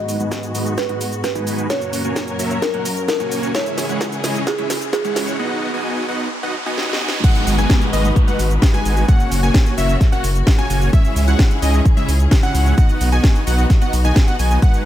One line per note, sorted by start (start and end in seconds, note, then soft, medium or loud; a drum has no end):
0.00 1.68 G#2 medium
0.00 0.17 G#3 medium
0.00 1.68 G#3 medium
0.00 1.68 B3 medium
0.00 0.17 D#4 medium
0.00 0.17 F#4 medium
0.00 1.68 F#4 medium
0.00 0.17 B4 medium
0.00 0.81 D#5 loud
0.00 0.17 F#5 loud
0.00 riser medium
0.09 open hi-hat loud
0.09 cabasa medium
0.20 0.52 G#3 medium
0.20 0.52 D#4 medium
0.20 0.52 F#4 medium
0.20 0.52 B4 medium
0.20 0.52 G#5 medium
0.20 closed hi-hat soft
0.20 cabasa soft
0.32 kick loud
0.32 snare soft
0.32 closed hi-hat medium
0.32 cabasa soft
0.43 closed hi-hat soft
0.43 cabasa soft
0.55 0.74 G#3 medium
0.55 0.74 D#4 medium
0.55 0.74 F#4 medium
0.55 0.74 B4 medium
0.55 0.74 D#5 medium
0.55 open hi-hat medium
0.55 cabasa medium
0.66 closed hi-hat soft
0.66 cabasa soft
0.78 1.23 B4 loud
0.78 kick loud
0.78 snare medium
0.78 closed hi-hat medium
0.78 cabasa soft
0.89 1.01 G#3 medium
0.89 1.01 D#4 medium
0.89 1.01 F#4 medium
0.89 1.01 B4 medium
0.89 1.01 F#5 medium
0.89 closed hi-hat soft
1.01 open hi-hat loud
1.01 cabasa medium
1.12 closed hi-hat soft
1.12 cabasa soft
1.24 1.71 B4 medium
1.24 kick loud
1.24 snare medium
1.24 closed hi-hat medium
1.24 cabasa soft
1.35 1.67 G#3 medium
1.35 1.67 D#4 medium
1.35 1.67 F#4 medium
1.35 1.67 B4 medium
1.35 1.67 G#5 loud
1.35 closed hi-hat soft
1.35 cabasa soft
1.47 open hi-hat medium
1.47 cabasa medium
1.58 closed hi-hat soft
1.58 cabasa soft
1.70 3.53 F#2 medium
1.70 3.53 F#3 medium
1.70 2.02 A#3 medium
1.70 2.02 C#4 medium
1.70 5.36 C#4 medium
1.70 2.02 F#4 medium
1.70 3.53 A#4 medium
1.70 2.65 C#5 loud
1.70 2.02 C#5 medium
1.70 2.02 F#5 loud
1.70 kick loud
1.70 snare medium
1.70 closed hi-hat medium
1.70 cabasa soft
1.82 closed hi-hat soft
1.82 cabasa soft
1.93 open hi-hat loud
1.93 cabasa medium
2.05 2.36 A#3 medium
2.05 2.36 C#4 medium
2.05 2.36 F#4 medium
2.05 2.36 C#5 medium
2.05 2.36 G#5 medium
2.05 cabasa soft
2.16 kick loud
2.16 snare medium
2.16 closed hi-hat medium
2.16 cabasa soft
2.28 closed hi-hat soft
2.28 cabasa soft
2.39 2.59 A#3 medium
2.39 2.59 C#4 medium
2.39 2.59 F#4 medium
2.39 2.59 C#5 medium
2.39 2.59 E5 medium
2.39 open hi-hat loud
2.39 cabasa medium
2.51 closed hi-hat soft
2.51 cabasa soft
2.62 3.07 A#4 loud
2.62 kick loud
2.62 snare medium
2.62 closed hi-hat medium
2.62 cabasa soft
2.74 2.86 A#3 medium
2.74 2.86 C#4 medium
2.74 2.86 F#4 medium
2.74 2.86 C#5 medium
2.74 2.86 F#5 medium
2.74 closed hi-hat soft
2.85 open hi-hat loud
2.85 cabasa medium
2.97 closed hi-hat soft
2.97 cabasa soft
3.08 3.56 A#4 medium
3.08 kick loud
3.08 snare medium
3.08 closed hi-hat medium
3.08 cabasa soft
3.20 3.52 A#3 loud
3.20 3.52 C#4 medium
3.20 3.52 F#4 medium
3.20 3.52 C#5 medium
3.20 3.52 G#5 loud
3.20 closed hi-hat soft
3.20 cabasa soft
3.31 open hi-hat medium
3.31 cabasa medium
3.43 closed hi-hat soft
3.43 cabasa soft
3.55 5.37 C#3 medium
3.55 3.86 G#3 medium
3.55 3.86 C#4 medium
3.55 3.86 E4 medium
3.55 5.37 E4 medium
3.55 5.37 G#4 medium
3.55 3.86 C#5 medium
3.55 4.50 C#5 loud
3.55 3.86 E5 loud
3.55 kick loud
3.55 snare medium
3.55 closed hi-hat medium
3.55 cabasa soft
3.66 closed hi-hat soft
3.66 cabasa soft
3.78 snare medium
3.78 open hi-hat loud
3.78 cabasa medium
3.89 4.21 G#3 medium
3.89 4.21 C#4 medium
3.89 4.21 E4 medium
3.89 4.21 C#5 medium
3.89 4.21 F#5 medium
3.89 closed hi-hat soft
3.89 cabasa soft
4.01 kick loud
4.01 snare medium
4.01 closed hi-hat medium
4.01 cabasa soft
4.12 closed hi-hat soft
4.12 cabasa soft
4.24 4.43 G#3 medium
4.24 4.43 C#4 medium
4.24 4.43 E4 medium
4.24 4.43 C#5 medium
4.24 4.43 D#5 medium
4.24 snare medium
4.24 open hi-hat loud
4.24 cabasa medium
4.35 closed hi-hat soft
4.35 cabasa soft
4.47 4.92 G#4 medium
4.47 kick loud
4.47 snare medium
4.47 closed hi-hat medium
4.47 cabasa soft
4.58 4.71 G#3 medium
4.58 4.71 C#4 medium
4.58 4.71 E4 medium
4.58 4.71 C#5 medium
4.58 4.71 E5 medium
4.58 closed hi-hat soft
4.70 snare medium
4.70 open hi-hat loud
4.70 cabasa medium
4.82 closed hi-hat soft
4.82 cabasa soft
4.93 5.41 G#4 medium
4.93 kick loud
4.93 snare medium
4.93 closed hi-hat medium
4.93 cabasa soft
5.05 5.36 G#3 loud
5.05 5.36 C#4 medium
5.05 5.36 E4 medium
5.05 5.36 C#5 medium
5.05 5.36 F#5 loud
5.05 closed hi-hat soft
5.05 cabasa soft
5.16 snare medium
5.16 open hi-hat medium
5.16 cabasa medium
5.28 cabasa soft
5.39 5.71 B3 loud
5.39 5.71 D#4 medium
5.39 5.71 F#4 medium
5.39 5.71 D#5 medium
5.39 5.71 F#5 loud
5.74 6.06 B3 medium
5.74 6.06 D#4 medium
5.74 6.06 F#4 medium
5.74 6.06 D#5 medium
5.74 6.06 G#5 medium
6.08 6.28 B3 medium
6.08 6.28 D#4 medium
6.08 6.28 F#4 medium
6.08 6.28 D#5 medium
6.08 6.28 F#5 medium
6.43 6.55 B3 medium
6.43 6.55 D#4 medium
6.43 6.55 F#4 medium
6.43 6.55 D#5 medium
6.43 6.55 F#5 medium
6.66 6.86 B3 medium
6.66 6.86 D#4 medium
6.66 6.86 F#4 medium
6.66 6.86 D#5 medium
6.66 6.86 G#5 loud
6.78 snare medium
6.89 6.98 B3 medium
6.89 6.98 D#4 medium
6.89 6.98 F#4 medium
6.89 6.98 D#5 medium
6.89 6.98 F#5 medium
6.89 snare medium
7.01 7.21 B3 medium
7.01 7.21 D#4 medium
7.01 7.21 F#4 medium
7.01 7.21 D#5 medium
7.01 7.21 G#5 medium
7.08 snare medium
7.24 7.56 G#3 medium
7.24 9.07 G#3 medium
7.24 7.56 D#4 medium
7.24 9.07 D#4 medium
7.24 7.56 F#4 medium
7.24 9.07 F#4 medium
7.24 7.56 B4 medium
7.24 9.07 B4 medium
7.24 7.56 F#5 loud
7.24 kick loud
7.24 closed hi-hat medium
7.24 crash loud
7.24 downlifter medium
7.24 cabasa soft
7.35 closed hi-hat soft
7.35 cabasa soft
7.47 7.66 G#1 loud
7.47 open hi-hat loud
7.47 cabasa medium
7.58 7.90 G#3 medium
7.58 7.90 D#4 medium
7.58 7.90 F#4 medium
7.58 7.90 B4 medium
7.58 7.90 G#5 medium
7.58 closed hi-hat soft
7.58 cabasa soft
7.70 kick loud
7.70 snare loud
7.70 closed hi-hat medium
7.70 cabasa soft
7.82 closed hi-hat soft
7.82 cabasa soft
7.93 8.12 G#1 medium
7.93 8.12 G#3 medium
7.93 8.12 D#4 medium
7.93 8.12 F#4 medium
7.93 8.12 B4 medium
7.93 8.12 D#5 medium
7.93 open hi-hat loud
7.93 cabasa medium
8.05 closed hi-hat soft
8.05 cabasa soft
8.16 kick loud
8.16 closed hi-hat medium
8.16 cabasa soft
8.28 8.40 G#3 medium
8.28 8.40 D#4 medium
8.28 8.40 F#4 medium
8.28 8.40 B4 medium
8.28 8.40 F#5 medium
8.28 closed hi-hat soft
8.28 cabasa soft
8.39 8.58 G#1 medium
8.39 open hi-hat loud
8.39 cabasa medium
8.51 closed hi-hat soft
8.51 cabasa soft
8.62 kick loud
8.62 snare loud
8.62 closed hi-hat medium
8.62 cabasa soft
8.74 9.06 G#3 loud
8.74 9.06 D#4 medium
8.74 9.06 F#4 medium
8.74 9.06 B4 medium
8.74 9.06 G#5 loud
8.74 closed hi-hat soft
8.74 cabasa soft
8.85 9.04 G#1 loud
8.85 open hi-hat medium
8.85 cabasa medium
8.97 closed hi-hat soft
8.97 cabasa soft
9.08 9.40 A#3 medium
9.08 10.91 A#3 medium
9.08 9.40 C#4 medium
9.08 10.91 C#4 medium
9.08 9.40 F#4 medium
9.08 10.91 F#4 medium
9.08 9.40 C#5 medium
9.08 9.40 F#5 loud
9.08 kick loud
9.08 closed hi-hat medium
9.08 cabasa soft
9.20 closed hi-hat soft
9.20 cabasa soft
9.32 9.50 F#1 loud
9.32 open hi-hat loud
9.32 cabasa medium
9.43 9.75 A#3 medium
9.43 9.75 C#4 medium
9.43 9.75 F#4 medium
9.43 9.75 C#5 medium
9.43 9.75 G#5 medium
9.43 cabasa soft
9.54 kick loud
9.54 snare loud
9.54 closed hi-hat medium
9.54 cabasa soft
9.66 closed hi-hat soft
9.66 cabasa soft
9.78 9.96 F#1 medium
9.78 9.97 A#3 medium
9.78 9.97 C#4 medium
9.78 9.97 F#4 medium
9.78 9.97 C#5 medium
9.78 9.97 E5 medium
9.78 open hi-hat loud
9.78 cabasa medium
9.89 closed hi-hat soft
9.89 cabasa soft
10.01 kick loud
10.01 snare soft
10.01 closed hi-hat medium
10.01 cabasa soft
10.12 10.24 A#3 medium
10.12 10.24 C#4 medium
10.12 10.24 F#4 medium
10.12 10.24 C#5 medium
10.12 10.24 F#5 medium
10.12 closed hi-hat soft
10.12 cabasa soft
10.24 10.43 F#1 medium
10.24 open hi-hat loud
10.24 cabasa medium
10.36 closed hi-hat soft
10.36 cabasa soft
10.47 kick loud
10.47 snare loud
10.47 closed hi-hat medium
10.47 cabasa soft
10.58 10.90 A#3 medium
10.58 10.90 C#4 medium
10.58 10.90 F#4 medium
10.58 10.90 C#5 medium
10.58 10.90 G#5 loud
10.58 closed hi-hat soft
10.58 cabasa soft
10.70 10.89 F#1 loud
10.70 open hi-hat loud
10.70 cabasa medium
10.82 closed hi-hat soft
10.82 cabasa soft
10.93 12.76 C#3 medium
10.93 11.25 G#3 medium
10.93 11.25 C#4 medium
10.93 12.76 C#4 medium
10.93 11.25 E4 medium
10.93 12.76 E4 medium
10.93 12.76 G#4 medium
10.93 11.25 C#5 medium
10.93 11.25 E5 loud
10.93 kick loud
10.93 closed hi-hat medium
10.93 cabasa soft
11.05 closed hi-hat soft
11.05 cabasa soft
11.16 11.35 C#2 loud
11.16 open hi-hat loud
11.16 cabasa medium
11.28 11.60 G#3 medium
11.28 11.60 C#4 medium
11.28 11.60 E4 medium
11.28 11.60 C#5 medium
11.28 11.60 F#5 medium
11.28 closed hi-hat soft
11.28 cabasa soft
11.39 kick loud
11.39 snare loud
11.39 closed hi-hat medium
11.39 cabasa soft
11.51 closed hi-hat soft
11.51 cabasa soft
11.62 11.81 C#2 medium
11.62 11.82 G#3 medium
11.62 11.82 C#4 medium
11.62 11.82 E4 medium
11.62 11.82 C#5 medium
11.62 11.82 D#5 medium
11.62 open hi-hat loud
11.62 cabasa medium
11.74 closed hi-hat soft
11.74 cabasa soft
11.85 kick loud
11.85 closed hi-hat medium
11.85 cabasa soft
11.97 12.09 G#3 medium
11.97 12.09 C#4 medium
11.97 12.09 E4 medium
11.97 12.09 C#5 medium
11.97 12.09 E5 medium
11.97 closed hi-hat soft
11.97 cabasa soft
12.08 12.27 C#2 medium
12.08 open hi-hat loud
12.08 cabasa medium
12.20 closed hi-hat soft
12.20 cabasa soft
12.31 kick loud
12.31 snare loud
12.31 closed hi-hat medium
12.31 cabasa soft
12.43 12.75 G#3 loud
12.43 12.75 C#4 medium
12.43 12.75 E4 medium
12.43 12.75 C#5 medium
12.43 12.75 F#5 loud
12.43 closed hi-hat soft
12.43 cabasa soft
12.55 12.73 C#2 medium
12.55 open hi-hat loud
12.55 cabasa medium
12.66 closed hi-hat soft
12.66 cabasa soft
12.78 13.10 B3 medium
12.78 14.61 B3 medium
12.78 13.10 D#4 medium
12.78 14.61 D#4 medium
12.78 13.10 F#4 medium
12.78 14.61 F#4 medium
12.78 13.10 D#5 medium
12.78 13.10 F#5 loud
12.78 kick loud
12.78 closed hi-hat medium
12.78 cabasa soft
12.89 closed hi-hat soft
12.89 cabasa soft
13.01 13.20 B1 loud
13.01 open hi-hat loud
13.01 cabasa medium
13.12 13.44 B3 medium
13.12 13.44 D#4 medium
13.12 13.44 F#4 medium
13.12 13.44 D#5 medium
13.12 13.44 G#5 medium
13.12 cabasa soft
13.24 kick loud
13.24 snare loud
13.24 closed hi-hat medium
13.24 cabasa soft
13.35 closed hi-hat soft
13.35 cabasa soft
13.47 13.66 B1 medium
13.47 13.66 B3 medium
13.47 13.66 D#4 medium
13.47 13.66 F#4 medium
13.47 13.66 D#5 medium
13.47 13.66 F#5 medium
13.47 open hi-hat loud
13.47 cabasa medium
13.58 closed hi-hat soft
13.58 cabasa soft
13.70 kick loud
13.70 snare soft
13.70 closed hi-hat medium
13.70 cabasa soft
13.82 13.94 B3 medium
13.82 13.94 D#4 medium
13.82 13.94 F#4 medium
13.82 13.94 D#5 medium
13.82 13.94 F#5 medium
13.82 closed hi-hat soft
13.82 cabasa soft
13.93 14.12 B1 loud
13.93 open hi-hat loud
13.93 cabasa medium
14.05 14.25 B3 medium
14.05 14.25 D#4 medium
14.05 14.25 F#4 medium
14.05 14.25 D#5 medium
14.05 14.25 G#5 loud
14.05 closed hi-hat soft
14.05 cabasa soft
14.16 kick loud
14.16 snare loud
14.16 closed hi-hat medium
14.16 cabasa soft
14.28 14.36 B3 medium
14.28 14.36 D#4 medium
14.28 14.36 F#4 medium
14.28 14.36 D#5 medium
14.28 14.36 F#5 medium
14.28 closed hi-hat soft
14.28 cabasa soft
14.39 14.58 B1 medium
14.39 14.60 B3 medium
14.39 14.60 D#4 medium
14.39 14.60 F#4 medium
14.39 14.60 D#5 medium
14.39 14.60 G#5 medium
14.39 open hi-hat loud
14.39 cabasa medium
14.51 cabasa soft
14.62 14.85 G#3 medium
14.62 14.85 D#4 medium
14.62 14.85 F#4 medium
14.62 14.85 B4 medium
14.62 14.85 F#5 loud
14.62 kick loud
14.62 closed hi-hat medium
14.62 ride medium
14.62 cabasa soft
14.74 closed hi-hat soft
14.74 cabasa soft